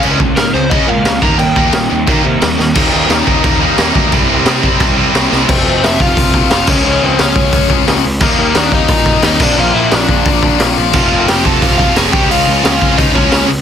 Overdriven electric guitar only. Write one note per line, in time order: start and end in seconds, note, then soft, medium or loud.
0.36 0.53 A#4 medium
0.54 0.71 C5 medium
0.70 0.88 D#5 loud
0.88 1.22 F5 medium
1.23 1.39 A#5 medium
1.39 2.39 G5 loud
5.49 5.81 C4 medium
5.49 5.84 C5 medium
5.84 6.00 E4 medium
5.84 6.01 E5 medium
6.01 6.48 F4 medium
6.01 6.51 F5 medium
6.51 6.67 F4 medium
6.51 6.69 F5 loud
6.68 6.84 C#4 medium
6.68 6.85 C#5 medium
6.85 7.01 C#4 medium
6.85 7.03 C#5 loud
7.04 7.19 C4 medium
7.04 7.20 C5 medium
7.20 7.84 C#4 medium
7.20 7.84 C#5 medium
8.21 8.53 A#3 medium
8.21 8.56 A#4 medium
8.56 8.72 D4 medium
8.56 8.74 D5 medium
8.74 9.21 D#4 medium
8.74 9.21 D#5 loud
9.24 9.39 D#4 medium
9.24 9.41 D#5 loud
9.42 9.57 D4 medium
9.42 9.58 D5 loud
9.58 9.73 F4 medium
9.58 9.74 F5 loud
9.73 9.90 E4 medium
9.73 9.94 E5 loud
9.92 10.56 D4 medium
9.92 10.61 D5 medium
10.95 11.26 F4 medium
10.95 11.26 F5 medium
11.28 11.45 G4 medium
11.28 11.46 G5 loud
11.46 11.62 A4 medium
11.46 11.63 A5 loud
11.62 11.78 F4 medium
11.62 11.77 F5 loud
11.78 11.95 F4 medium
11.78 11.96 F5 loud
11.96 12.13 G#4 medium
11.96 12.12 G#5 loud
12.12 12.29 G4 medium
12.12 12.30 G5 loud
12.31 12.63 F4 medium
12.31 12.63 F5 loud
12.64 12.71 F4 medium
12.64 12.70 F5 loud
12.72 12.96 F4 medium
12.72 12.96 F5 loud
12.97 13.14 D#4 medium
12.97 13.14 D#5 loud
13.14 13.48 C#4 medium
13.14 13.46 C#5 loud